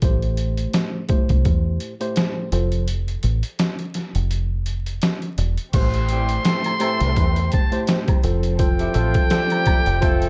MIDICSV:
0, 0, Header, 1, 7, 480
1, 0, Start_track
1, 0, Key_signature, 0, "minor"
1, 0, Tempo, 714286
1, 15, Time_signature, 4, 2, 24, 8
1, 6917, End_track
2, 0, Start_track
2, 0, Title_t, "Muted trumpet"
2, 0, Program_c, 0, 59
2, 3861, Note_on_c, 0, 84, 101
2, 5031, Note_off_c, 0, 84, 0
2, 5062, Note_on_c, 0, 81, 85
2, 5275, Note_off_c, 0, 81, 0
2, 5775, Note_on_c, 0, 79, 106
2, 6917, Note_off_c, 0, 79, 0
2, 6917, End_track
3, 0, Start_track
3, 0, Title_t, "Tine electric piano"
3, 0, Program_c, 1, 4
3, 21, Note_on_c, 1, 45, 95
3, 23, Note_on_c, 1, 57, 85
3, 26, Note_on_c, 1, 67, 76
3, 28, Note_on_c, 1, 72, 96
3, 687, Note_off_c, 1, 45, 0
3, 688, Note_off_c, 1, 57, 0
3, 690, Note_off_c, 1, 67, 0
3, 691, Note_off_c, 1, 72, 0
3, 726, Note_on_c, 1, 45, 93
3, 729, Note_on_c, 1, 57, 79
3, 731, Note_on_c, 1, 67, 75
3, 734, Note_on_c, 1, 72, 98
3, 1291, Note_off_c, 1, 45, 0
3, 1292, Note_off_c, 1, 57, 0
3, 1294, Note_off_c, 1, 67, 0
3, 1295, Note_off_c, 1, 72, 0
3, 1346, Note_on_c, 1, 45, 92
3, 1348, Note_on_c, 1, 57, 81
3, 1351, Note_on_c, 1, 67, 86
3, 1353, Note_on_c, 1, 72, 106
3, 1668, Note_off_c, 1, 45, 0
3, 1669, Note_off_c, 1, 57, 0
3, 1670, Note_off_c, 1, 67, 0
3, 1672, Note_off_c, 1, 72, 0
3, 1694, Note_on_c, 1, 53, 81
3, 1697, Note_on_c, 1, 65, 72
3, 1699, Note_on_c, 1, 69, 70
3, 1702, Note_on_c, 1, 72, 79
3, 1918, Note_off_c, 1, 53, 0
3, 1919, Note_off_c, 1, 65, 0
3, 1920, Note_off_c, 1, 69, 0
3, 1922, Note_off_c, 1, 72, 0
3, 3861, Note_on_c, 1, 45, 97
3, 3864, Note_on_c, 1, 57, 88
3, 3867, Note_on_c, 1, 67, 78
3, 3869, Note_on_c, 1, 72, 100
3, 4527, Note_off_c, 1, 45, 0
3, 4529, Note_off_c, 1, 57, 0
3, 4530, Note_off_c, 1, 67, 0
3, 4531, Note_off_c, 1, 72, 0
3, 4567, Note_on_c, 1, 45, 90
3, 4569, Note_on_c, 1, 57, 75
3, 4572, Note_on_c, 1, 67, 77
3, 4575, Note_on_c, 1, 72, 106
3, 5131, Note_off_c, 1, 45, 0
3, 5133, Note_off_c, 1, 57, 0
3, 5134, Note_off_c, 1, 67, 0
3, 5135, Note_off_c, 1, 72, 0
3, 5186, Note_on_c, 1, 45, 99
3, 5188, Note_on_c, 1, 57, 83
3, 5191, Note_on_c, 1, 67, 90
3, 5193, Note_on_c, 1, 72, 104
3, 5508, Note_off_c, 1, 45, 0
3, 5509, Note_off_c, 1, 57, 0
3, 5510, Note_off_c, 1, 67, 0
3, 5512, Note_off_c, 1, 72, 0
3, 5533, Note_on_c, 1, 53, 83
3, 5536, Note_on_c, 1, 65, 74
3, 5539, Note_on_c, 1, 69, 73
3, 5541, Note_on_c, 1, 72, 80
3, 5757, Note_off_c, 1, 53, 0
3, 5758, Note_off_c, 1, 65, 0
3, 5760, Note_off_c, 1, 69, 0
3, 5761, Note_off_c, 1, 72, 0
3, 5771, Note_on_c, 1, 53, 103
3, 5774, Note_on_c, 1, 65, 84
3, 5776, Note_on_c, 1, 69, 83
3, 5779, Note_on_c, 1, 72, 95
3, 5996, Note_off_c, 1, 53, 0
3, 5998, Note_off_c, 1, 65, 0
3, 5999, Note_off_c, 1, 69, 0
3, 6000, Note_off_c, 1, 72, 0
3, 6009, Note_on_c, 1, 53, 91
3, 6012, Note_on_c, 1, 65, 85
3, 6014, Note_on_c, 1, 69, 96
3, 6017, Note_on_c, 1, 72, 96
3, 6235, Note_off_c, 1, 53, 0
3, 6236, Note_off_c, 1, 65, 0
3, 6238, Note_off_c, 1, 69, 0
3, 6239, Note_off_c, 1, 72, 0
3, 6250, Note_on_c, 1, 53, 92
3, 6252, Note_on_c, 1, 65, 87
3, 6255, Note_on_c, 1, 69, 93
3, 6258, Note_on_c, 1, 72, 110
3, 6699, Note_off_c, 1, 53, 0
3, 6700, Note_off_c, 1, 65, 0
3, 6701, Note_off_c, 1, 69, 0
3, 6703, Note_off_c, 1, 72, 0
3, 6724, Note_on_c, 1, 53, 91
3, 6727, Note_on_c, 1, 65, 93
3, 6729, Note_on_c, 1, 69, 84
3, 6732, Note_on_c, 1, 72, 114
3, 6917, Note_off_c, 1, 53, 0
3, 6917, Note_off_c, 1, 65, 0
3, 6917, Note_off_c, 1, 69, 0
3, 6917, Note_off_c, 1, 72, 0
3, 6917, End_track
4, 0, Start_track
4, 0, Title_t, "String section"
4, 0, Program_c, 2, 48
4, 3850, Note_on_c, 2, 67, 72
4, 3851, Note_on_c, 2, 57, 84
4, 3851, Note_on_c, 2, 72, 86
4, 5516, Note_off_c, 2, 57, 0
4, 5516, Note_off_c, 2, 67, 0
4, 5516, Note_off_c, 2, 72, 0
4, 5536, Note_on_c, 2, 53, 76
4, 5536, Note_on_c, 2, 60, 77
4, 5537, Note_on_c, 2, 69, 83
4, 6917, Note_off_c, 2, 53, 0
4, 6917, Note_off_c, 2, 60, 0
4, 6917, Note_off_c, 2, 69, 0
4, 6917, End_track
5, 0, Start_track
5, 0, Title_t, "Horn section"
5, 0, Program_c, 3, 61
5, 4101, Note_on_c, 3, 52, 84
5, 4101, Note_on_c, 3, 55, 93
5, 4101, Note_on_c, 3, 60, 95
5, 4101, Note_on_c, 3, 67, 101
5, 4290, Note_off_c, 3, 52, 0
5, 4291, Note_off_c, 3, 55, 0
5, 4291, Note_off_c, 3, 60, 0
5, 4291, Note_off_c, 3, 67, 0
5, 4328, Note_on_c, 3, 52, 82
5, 4328, Note_on_c, 3, 57, 78
5, 4328, Note_on_c, 3, 60, 83
5, 4328, Note_on_c, 3, 69, 85
5, 4523, Note_off_c, 3, 52, 0
5, 4523, Note_off_c, 3, 57, 0
5, 4523, Note_off_c, 3, 60, 0
5, 4523, Note_off_c, 3, 69, 0
5, 4577, Note_on_c, 3, 52, 91
5, 4577, Note_on_c, 3, 57, 96
5, 4577, Note_on_c, 3, 60, 94
5, 4577, Note_on_c, 3, 69, 104
5, 5029, Note_off_c, 3, 52, 0
5, 5029, Note_off_c, 3, 57, 0
5, 5029, Note_off_c, 3, 60, 0
5, 5029, Note_off_c, 3, 69, 0
5, 5910, Note_on_c, 3, 67, 88
5, 5911, Note_on_c, 3, 55, 81
5, 5911, Note_on_c, 3, 64, 92
5, 5995, Note_off_c, 3, 55, 0
5, 5995, Note_off_c, 3, 64, 0
5, 5995, Note_off_c, 3, 67, 0
5, 6016, Note_on_c, 3, 48, 91
5, 6016, Note_on_c, 3, 53, 96
5, 6016, Note_on_c, 3, 57, 94
5, 6016, Note_on_c, 3, 65, 104
5, 6207, Note_off_c, 3, 48, 0
5, 6208, Note_off_c, 3, 53, 0
5, 6208, Note_off_c, 3, 57, 0
5, 6208, Note_off_c, 3, 65, 0
5, 6251, Note_on_c, 3, 57, 114
5, 6252, Note_on_c, 3, 48, 100
5, 6252, Note_on_c, 3, 55, 115
5, 6252, Note_on_c, 3, 67, 124
5, 6706, Note_off_c, 3, 57, 0
5, 6707, Note_off_c, 3, 48, 0
5, 6707, Note_off_c, 3, 55, 0
5, 6707, Note_off_c, 3, 67, 0
5, 6736, Note_on_c, 3, 53, 98
5, 6736, Note_on_c, 3, 57, 105
5, 6736, Note_on_c, 3, 60, 104
5, 6736, Note_on_c, 3, 69, 114
5, 6917, Note_off_c, 3, 53, 0
5, 6917, Note_off_c, 3, 57, 0
5, 6917, Note_off_c, 3, 60, 0
5, 6917, Note_off_c, 3, 69, 0
5, 6917, End_track
6, 0, Start_track
6, 0, Title_t, "Fingered electric bass"
6, 0, Program_c, 4, 33
6, 17, Note_on_c, 4, 33, 99
6, 443, Note_off_c, 4, 33, 0
6, 873, Note_on_c, 4, 36, 88
6, 966, Note_off_c, 4, 36, 0
6, 978, Note_on_c, 4, 40, 92
6, 1191, Note_off_c, 4, 40, 0
6, 1696, Note_on_c, 4, 29, 92
6, 2123, Note_off_c, 4, 29, 0
6, 2177, Note_on_c, 4, 33, 94
6, 2295, Note_off_c, 4, 33, 0
6, 2790, Note_on_c, 4, 29, 83
6, 3349, Note_off_c, 4, 29, 0
6, 3616, Note_on_c, 4, 28, 90
6, 3735, Note_off_c, 4, 28, 0
6, 3856, Note_on_c, 4, 33, 104
6, 4283, Note_off_c, 4, 33, 0
6, 4710, Note_on_c, 4, 36, 87
6, 4804, Note_off_c, 4, 36, 0
6, 4818, Note_on_c, 4, 40, 92
6, 5031, Note_off_c, 4, 40, 0
6, 5537, Note_on_c, 4, 29, 95
6, 5963, Note_off_c, 4, 29, 0
6, 6017, Note_on_c, 4, 33, 97
6, 6135, Note_off_c, 4, 33, 0
6, 6631, Note_on_c, 4, 29, 89
6, 6917, Note_off_c, 4, 29, 0
6, 6917, End_track
7, 0, Start_track
7, 0, Title_t, "Drums"
7, 13, Note_on_c, 9, 42, 100
7, 16, Note_on_c, 9, 36, 119
7, 80, Note_off_c, 9, 42, 0
7, 83, Note_off_c, 9, 36, 0
7, 150, Note_on_c, 9, 42, 36
7, 218, Note_off_c, 9, 42, 0
7, 251, Note_on_c, 9, 42, 72
7, 318, Note_off_c, 9, 42, 0
7, 386, Note_on_c, 9, 42, 56
7, 453, Note_off_c, 9, 42, 0
7, 494, Note_on_c, 9, 42, 97
7, 498, Note_on_c, 9, 38, 117
7, 561, Note_off_c, 9, 42, 0
7, 565, Note_off_c, 9, 38, 0
7, 730, Note_on_c, 9, 42, 69
7, 736, Note_on_c, 9, 36, 100
7, 797, Note_off_c, 9, 42, 0
7, 803, Note_off_c, 9, 36, 0
7, 868, Note_on_c, 9, 42, 58
7, 873, Note_on_c, 9, 36, 97
7, 935, Note_off_c, 9, 42, 0
7, 940, Note_off_c, 9, 36, 0
7, 975, Note_on_c, 9, 42, 73
7, 977, Note_on_c, 9, 36, 91
7, 1042, Note_off_c, 9, 42, 0
7, 1045, Note_off_c, 9, 36, 0
7, 1211, Note_on_c, 9, 42, 71
7, 1279, Note_off_c, 9, 42, 0
7, 1349, Note_on_c, 9, 42, 51
7, 1416, Note_off_c, 9, 42, 0
7, 1451, Note_on_c, 9, 42, 90
7, 1459, Note_on_c, 9, 38, 110
7, 1518, Note_off_c, 9, 42, 0
7, 1526, Note_off_c, 9, 38, 0
7, 1694, Note_on_c, 9, 42, 81
7, 1761, Note_off_c, 9, 42, 0
7, 1826, Note_on_c, 9, 42, 48
7, 1893, Note_off_c, 9, 42, 0
7, 1933, Note_on_c, 9, 42, 100
7, 2000, Note_off_c, 9, 42, 0
7, 2070, Note_on_c, 9, 42, 37
7, 2137, Note_off_c, 9, 42, 0
7, 2170, Note_on_c, 9, 42, 71
7, 2237, Note_off_c, 9, 42, 0
7, 2305, Note_on_c, 9, 42, 58
7, 2372, Note_off_c, 9, 42, 0
7, 2412, Note_on_c, 9, 42, 98
7, 2416, Note_on_c, 9, 38, 124
7, 2479, Note_off_c, 9, 42, 0
7, 2483, Note_off_c, 9, 38, 0
7, 2545, Note_on_c, 9, 42, 34
7, 2612, Note_off_c, 9, 42, 0
7, 2649, Note_on_c, 9, 42, 69
7, 2654, Note_on_c, 9, 38, 37
7, 2716, Note_off_c, 9, 42, 0
7, 2721, Note_off_c, 9, 38, 0
7, 2788, Note_on_c, 9, 42, 58
7, 2855, Note_off_c, 9, 42, 0
7, 2894, Note_on_c, 9, 42, 74
7, 2961, Note_off_c, 9, 42, 0
7, 3131, Note_on_c, 9, 42, 67
7, 3198, Note_off_c, 9, 42, 0
7, 3268, Note_on_c, 9, 42, 49
7, 3336, Note_off_c, 9, 42, 0
7, 3371, Note_on_c, 9, 42, 87
7, 3380, Note_on_c, 9, 38, 113
7, 3438, Note_off_c, 9, 42, 0
7, 3447, Note_off_c, 9, 38, 0
7, 3508, Note_on_c, 9, 42, 34
7, 3575, Note_off_c, 9, 42, 0
7, 3614, Note_on_c, 9, 42, 75
7, 3681, Note_off_c, 9, 42, 0
7, 3747, Note_on_c, 9, 42, 48
7, 3814, Note_off_c, 9, 42, 0
7, 3852, Note_on_c, 9, 42, 101
7, 3855, Note_on_c, 9, 49, 93
7, 3856, Note_on_c, 9, 36, 113
7, 3856, Note_on_c, 9, 82, 73
7, 3920, Note_off_c, 9, 42, 0
7, 3922, Note_off_c, 9, 49, 0
7, 3923, Note_off_c, 9, 36, 0
7, 3923, Note_off_c, 9, 82, 0
7, 3989, Note_on_c, 9, 42, 53
7, 4057, Note_off_c, 9, 42, 0
7, 4089, Note_on_c, 9, 42, 73
7, 4098, Note_on_c, 9, 82, 50
7, 4157, Note_off_c, 9, 42, 0
7, 4165, Note_off_c, 9, 82, 0
7, 4225, Note_on_c, 9, 42, 58
7, 4292, Note_off_c, 9, 42, 0
7, 4332, Note_on_c, 9, 42, 102
7, 4332, Note_on_c, 9, 82, 80
7, 4336, Note_on_c, 9, 38, 120
7, 4399, Note_off_c, 9, 42, 0
7, 4399, Note_off_c, 9, 82, 0
7, 4403, Note_off_c, 9, 38, 0
7, 4465, Note_on_c, 9, 42, 51
7, 4474, Note_on_c, 9, 76, 56
7, 4532, Note_off_c, 9, 42, 0
7, 4542, Note_off_c, 9, 76, 0
7, 4570, Note_on_c, 9, 42, 72
7, 4577, Note_on_c, 9, 76, 72
7, 4577, Note_on_c, 9, 82, 49
7, 4637, Note_off_c, 9, 42, 0
7, 4644, Note_off_c, 9, 76, 0
7, 4644, Note_off_c, 9, 82, 0
7, 4708, Note_on_c, 9, 42, 60
7, 4775, Note_off_c, 9, 42, 0
7, 4814, Note_on_c, 9, 42, 77
7, 4817, Note_on_c, 9, 36, 92
7, 4817, Note_on_c, 9, 82, 69
7, 4881, Note_off_c, 9, 42, 0
7, 4884, Note_off_c, 9, 82, 0
7, 4885, Note_off_c, 9, 36, 0
7, 4948, Note_on_c, 9, 42, 59
7, 5015, Note_off_c, 9, 42, 0
7, 5049, Note_on_c, 9, 82, 52
7, 5051, Note_on_c, 9, 42, 70
7, 5064, Note_on_c, 9, 36, 97
7, 5116, Note_off_c, 9, 82, 0
7, 5118, Note_off_c, 9, 42, 0
7, 5131, Note_off_c, 9, 36, 0
7, 5188, Note_on_c, 9, 42, 50
7, 5255, Note_off_c, 9, 42, 0
7, 5291, Note_on_c, 9, 42, 93
7, 5292, Note_on_c, 9, 82, 76
7, 5299, Note_on_c, 9, 38, 115
7, 5358, Note_off_c, 9, 42, 0
7, 5359, Note_off_c, 9, 82, 0
7, 5367, Note_off_c, 9, 38, 0
7, 5427, Note_on_c, 9, 42, 53
7, 5431, Note_on_c, 9, 36, 97
7, 5434, Note_on_c, 9, 76, 48
7, 5495, Note_off_c, 9, 42, 0
7, 5499, Note_off_c, 9, 36, 0
7, 5502, Note_off_c, 9, 76, 0
7, 5530, Note_on_c, 9, 82, 54
7, 5534, Note_on_c, 9, 42, 81
7, 5597, Note_off_c, 9, 82, 0
7, 5601, Note_off_c, 9, 42, 0
7, 5666, Note_on_c, 9, 42, 50
7, 5733, Note_off_c, 9, 42, 0
7, 5772, Note_on_c, 9, 42, 104
7, 5775, Note_on_c, 9, 36, 117
7, 5775, Note_on_c, 9, 82, 70
7, 5840, Note_off_c, 9, 42, 0
7, 5842, Note_off_c, 9, 82, 0
7, 5843, Note_off_c, 9, 36, 0
7, 5909, Note_on_c, 9, 42, 52
7, 5976, Note_off_c, 9, 42, 0
7, 6009, Note_on_c, 9, 42, 72
7, 6017, Note_on_c, 9, 82, 49
7, 6076, Note_off_c, 9, 42, 0
7, 6084, Note_off_c, 9, 82, 0
7, 6144, Note_on_c, 9, 42, 59
7, 6149, Note_on_c, 9, 36, 98
7, 6211, Note_off_c, 9, 42, 0
7, 6216, Note_off_c, 9, 36, 0
7, 6251, Note_on_c, 9, 42, 105
7, 6251, Note_on_c, 9, 82, 78
7, 6255, Note_on_c, 9, 38, 120
7, 6318, Note_off_c, 9, 42, 0
7, 6319, Note_off_c, 9, 82, 0
7, 6323, Note_off_c, 9, 38, 0
7, 6385, Note_on_c, 9, 42, 50
7, 6395, Note_on_c, 9, 76, 56
7, 6452, Note_off_c, 9, 42, 0
7, 6462, Note_off_c, 9, 76, 0
7, 6489, Note_on_c, 9, 42, 68
7, 6496, Note_on_c, 9, 36, 106
7, 6497, Note_on_c, 9, 76, 73
7, 6497, Note_on_c, 9, 82, 51
7, 6556, Note_off_c, 9, 42, 0
7, 6563, Note_off_c, 9, 36, 0
7, 6564, Note_off_c, 9, 76, 0
7, 6564, Note_off_c, 9, 82, 0
7, 6627, Note_on_c, 9, 42, 56
7, 6694, Note_off_c, 9, 42, 0
7, 6733, Note_on_c, 9, 42, 75
7, 6736, Note_on_c, 9, 82, 69
7, 6737, Note_on_c, 9, 36, 96
7, 6800, Note_off_c, 9, 42, 0
7, 6803, Note_off_c, 9, 82, 0
7, 6804, Note_off_c, 9, 36, 0
7, 6866, Note_on_c, 9, 42, 59
7, 6917, Note_off_c, 9, 42, 0
7, 6917, End_track
0, 0, End_of_file